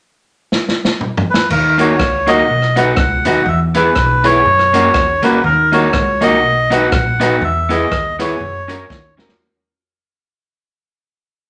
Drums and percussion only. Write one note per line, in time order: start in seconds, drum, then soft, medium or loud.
0.52 snare medium
0.68 snare medium
0.85 snare medium
1.01 mid tom medium
1.17 floor tom loud
1.34 snare medium
1.50 crash medium
1.79 closed hi-hat medium
1.99 kick loud
1.99 cross-stick loud
2.27 closed hi-hat medium
2.62 cross-stick medium
2.76 closed hi-hat medium
2.96 kick loud
2.96 cross-stick loud
3.25 closed hi-hat medium
3.74 closed hi-hat medium
3.95 kick loud
3.95 cross-stick loud
4.24 closed hi-hat medium
4.59 cross-stick medium
4.74 closed hi-hat loud
4.94 kick loud
4.94 cross-stick loud
5.23 closed hi-hat medium
5.72 closed hi-hat medium
5.93 kick loud
5.93 cross-stick loud
6.21 closed hi-hat medium
6.71 closed hi-hat loud
6.92 kick loud
6.92 cross-stick loud
7.21 closed hi-hat medium
7.70 closed hi-hat medium
7.92 kick loud
7.92 cross-stick loud
8.20 cross-stick medium
8.20 closed hi-hat medium
8.69 closed hi-hat medium
8.90 kick loud
8.90 snare medium
9.19 snare medium
9.29 snare loud